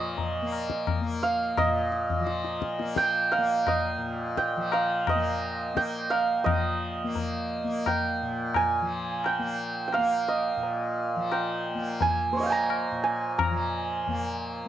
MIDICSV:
0, 0, Header, 1, 4, 480
1, 0, Start_track
1, 0, Tempo, 698487
1, 2042, Time_signature, 5, 2, 24, 8
1, 4918, Tempo, 691244
1, 10143, End_track
2, 0, Start_track
2, 0, Title_t, "Santur"
2, 0, Program_c, 0, 15
2, 0, Note_on_c, 0, 73, 93
2, 0, Note_on_c, 0, 75, 91
2, 424, Note_off_c, 0, 73, 0
2, 844, Note_on_c, 0, 77, 87
2, 1082, Note_off_c, 0, 75, 0
2, 1084, Note_on_c, 0, 75, 95
2, 2043, Note_on_c, 0, 79, 107
2, 2277, Note_off_c, 0, 77, 0
2, 2280, Note_on_c, 0, 77, 85
2, 2524, Note_off_c, 0, 75, 0
2, 2527, Note_on_c, 0, 75, 67
2, 3006, Note_off_c, 0, 79, 0
2, 3009, Note_on_c, 0, 79, 92
2, 3248, Note_off_c, 0, 77, 0
2, 3251, Note_on_c, 0, 77, 82
2, 3496, Note_off_c, 0, 75, 0
2, 3499, Note_on_c, 0, 75, 76
2, 3962, Note_off_c, 0, 79, 0
2, 3965, Note_on_c, 0, 79, 95
2, 4191, Note_off_c, 0, 77, 0
2, 4194, Note_on_c, 0, 77, 87
2, 4425, Note_off_c, 0, 75, 0
2, 4427, Note_on_c, 0, 75, 74
2, 5401, Note_off_c, 0, 79, 0
2, 5415, Note_on_c, 0, 79, 82
2, 5726, Note_off_c, 0, 77, 0
2, 5894, Note_on_c, 0, 80, 96
2, 5936, Note_off_c, 0, 79, 0
2, 6075, Note_off_c, 0, 75, 0
2, 6377, Note_on_c, 0, 79, 84
2, 6419, Note_off_c, 0, 80, 0
2, 6805, Note_off_c, 0, 79, 0
2, 6808, Note_on_c, 0, 79, 64
2, 6848, Note_on_c, 0, 77, 91
2, 7089, Note_on_c, 0, 75, 70
2, 7806, Note_off_c, 0, 79, 0
2, 7809, Note_on_c, 0, 79, 77
2, 8294, Note_on_c, 0, 80, 96
2, 8336, Note_off_c, 0, 79, 0
2, 8388, Note_off_c, 0, 77, 0
2, 8508, Note_on_c, 0, 72, 43
2, 8533, Note_on_c, 0, 73, 51
2, 8554, Note_off_c, 0, 75, 0
2, 8557, Note_on_c, 0, 75, 53
2, 8578, Note_on_c, 0, 77, 57
2, 8601, Note_on_c, 0, 79, 65
2, 8625, Note_off_c, 0, 80, 0
2, 8627, Note_on_c, 0, 80, 66
2, 8642, Note_on_c, 0, 82, 104
2, 8998, Note_off_c, 0, 80, 0
2, 9001, Note_on_c, 0, 80, 90
2, 9042, Note_off_c, 0, 79, 0
2, 9240, Note_off_c, 0, 82, 0
2, 9243, Note_on_c, 0, 82, 86
2, 10118, Note_off_c, 0, 77, 0
2, 10143, Note_off_c, 0, 72, 0
2, 10143, Note_off_c, 0, 73, 0
2, 10143, Note_off_c, 0, 75, 0
2, 10143, Note_off_c, 0, 80, 0
2, 10143, Note_off_c, 0, 82, 0
2, 10143, End_track
3, 0, Start_track
3, 0, Title_t, "Tanpura"
3, 0, Program_c, 1, 104
3, 0, Note_on_c, 1, 46, 57
3, 0, Note_on_c, 1, 53, 63
3, 0, Note_on_c, 1, 58, 64
3, 291, Note_off_c, 1, 58, 0
3, 291, Note_on_c, 1, 58, 65
3, 694, Note_off_c, 1, 58, 0
3, 694, Note_on_c, 1, 58, 60
3, 1094, Note_off_c, 1, 46, 0
3, 1097, Note_on_c, 1, 46, 62
3, 1507, Note_off_c, 1, 53, 0
3, 1510, Note_on_c, 1, 53, 64
3, 1917, Note_off_c, 1, 58, 0
3, 1917, Note_on_c, 1, 58, 59
3, 2323, Note_off_c, 1, 58, 0
3, 2323, Note_on_c, 1, 58, 64
3, 2732, Note_off_c, 1, 46, 0
3, 2735, Note_on_c, 1, 46, 63
3, 3133, Note_off_c, 1, 53, 0
3, 3135, Note_on_c, 1, 53, 60
3, 3540, Note_off_c, 1, 58, 0
3, 3540, Note_on_c, 1, 58, 60
3, 3947, Note_off_c, 1, 58, 0
3, 3947, Note_on_c, 1, 58, 62
3, 4428, Note_off_c, 1, 53, 0
3, 4431, Note_on_c, 1, 53, 56
3, 4838, Note_off_c, 1, 58, 0
3, 4838, Note_on_c, 1, 58, 55
3, 5253, Note_off_c, 1, 58, 0
3, 5253, Note_on_c, 1, 58, 57
3, 5652, Note_off_c, 1, 46, 0
3, 5655, Note_on_c, 1, 46, 57
3, 6065, Note_off_c, 1, 53, 0
3, 6068, Note_on_c, 1, 53, 53
3, 6468, Note_off_c, 1, 58, 0
3, 6468, Note_on_c, 1, 58, 55
3, 6877, Note_off_c, 1, 58, 0
3, 6877, Note_on_c, 1, 58, 60
3, 7282, Note_off_c, 1, 46, 0
3, 7285, Note_on_c, 1, 46, 54
3, 7694, Note_off_c, 1, 53, 0
3, 7697, Note_on_c, 1, 53, 57
3, 8107, Note_off_c, 1, 58, 0
3, 8107, Note_on_c, 1, 58, 59
3, 8504, Note_off_c, 1, 58, 0
3, 8504, Note_on_c, 1, 58, 56
3, 8912, Note_off_c, 1, 46, 0
3, 8915, Note_on_c, 1, 46, 59
3, 9323, Note_off_c, 1, 53, 0
3, 9326, Note_on_c, 1, 53, 60
3, 9728, Note_off_c, 1, 58, 0
3, 9728, Note_on_c, 1, 58, 60
3, 10143, Note_off_c, 1, 46, 0
3, 10143, Note_off_c, 1, 53, 0
3, 10143, Note_off_c, 1, 58, 0
3, 10143, End_track
4, 0, Start_track
4, 0, Title_t, "Tabla"
4, 122, Note_on_c, 9, 63, 69
4, 122, Note_on_c, 9, 64, 68
4, 191, Note_off_c, 9, 63, 0
4, 191, Note_off_c, 9, 64, 0
4, 361, Note_on_c, 9, 60, 60
4, 429, Note_off_c, 9, 60, 0
4, 479, Note_on_c, 9, 37, 58
4, 548, Note_off_c, 9, 37, 0
4, 599, Note_on_c, 9, 60, 81
4, 599, Note_on_c, 9, 64, 72
4, 668, Note_off_c, 9, 60, 0
4, 668, Note_off_c, 9, 64, 0
4, 1082, Note_on_c, 9, 60, 78
4, 1082, Note_on_c, 9, 64, 74
4, 1151, Note_off_c, 9, 60, 0
4, 1151, Note_off_c, 9, 64, 0
4, 1319, Note_on_c, 9, 62, 60
4, 1388, Note_off_c, 9, 62, 0
4, 1443, Note_on_c, 9, 64, 57
4, 1512, Note_off_c, 9, 64, 0
4, 1558, Note_on_c, 9, 62, 79
4, 1627, Note_off_c, 9, 62, 0
4, 1680, Note_on_c, 9, 62, 61
4, 1749, Note_off_c, 9, 62, 0
4, 1799, Note_on_c, 9, 37, 59
4, 1868, Note_off_c, 9, 37, 0
4, 1919, Note_on_c, 9, 62, 63
4, 1988, Note_off_c, 9, 62, 0
4, 2037, Note_on_c, 9, 37, 78
4, 2105, Note_off_c, 9, 37, 0
4, 2279, Note_on_c, 9, 60, 74
4, 2348, Note_off_c, 9, 60, 0
4, 2520, Note_on_c, 9, 60, 88
4, 2520, Note_on_c, 9, 64, 80
4, 2588, Note_off_c, 9, 60, 0
4, 2588, Note_off_c, 9, 64, 0
4, 3006, Note_on_c, 9, 37, 78
4, 3074, Note_off_c, 9, 37, 0
4, 3243, Note_on_c, 9, 60, 76
4, 3312, Note_off_c, 9, 60, 0
4, 3485, Note_on_c, 9, 60, 95
4, 3485, Note_on_c, 9, 64, 89
4, 3554, Note_off_c, 9, 60, 0
4, 3554, Note_off_c, 9, 64, 0
4, 3963, Note_on_c, 9, 37, 74
4, 4032, Note_off_c, 9, 37, 0
4, 4201, Note_on_c, 9, 60, 78
4, 4270, Note_off_c, 9, 60, 0
4, 4441, Note_on_c, 9, 60, 95
4, 4441, Note_on_c, 9, 64, 91
4, 4510, Note_off_c, 9, 60, 0
4, 4510, Note_off_c, 9, 64, 0
4, 4917, Note_on_c, 9, 63, 68
4, 4917, Note_on_c, 9, 64, 62
4, 4986, Note_off_c, 9, 63, 0
4, 4986, Note_off_c, 9, 64, 0
4, 5408, Note_on_c, 9, 60, 77
4, 5408, Note_on_c, 9, 64, 71
4, 5477, Note_off_c, 9, 60, 0
4, 5477, Note_off_c, 9, 64, 0
4, 5882, Note_on_c, 9, 60, 79
4, 5882, Note_on_c, 9, 64, 66
4, 5951, Note_off_c, 9, 60, 0
4, 5951, Note_off_c, 9, 64, 0
4, 6366, Note_on_c, 9, 60, 74
4, 6435, Note_off_c, 9, 60, 0
4, 6841, Note_on_c, 9, 60, 74
4, 6910, Note_off_c, 9, 60, 0
4, 7088, Note_on_c, 9, 60, 59
4, 7158, Note_off_c, 9, 60, 0
4, 7331, Note_on_c, 9, 63, 65
4, 7400, Note_off_c, 9, 63, 0
4, 7806, Note_on_c, 9, 60, 78
4, 7876, Note_off_c, 9, 60, 0
4, 8285, Note_on_c, 9, 63, 72
4, 8285, Note_on_c, 9, 64, 69
4, 8355, Note_off_c, 9, 63, 0
4, 8355, Note_off_c, 9, 64, 0
4, 8768, Note_on_c, 9, 60, 76
4, 8837, Note_off_c, 9, 60, 0
4, 9246, Note_on_c, 9, 60, 100
4, 9246, Note_on_c, 9, 64, 87
4, 9315, Note_off_c, 9, 60, 0
4, 9315, Note_off_c, 9, 64, 0
4, 9722, Note_on_c, 9, 63, 68
4, 9722, Note_on_c, 9, 64, 65
4, 9791, Note_off_c, 9, 63, 0
4, 9791, Note_off_c, 9, 64, 0
4, 10143, End_track
0, 0, End_of_file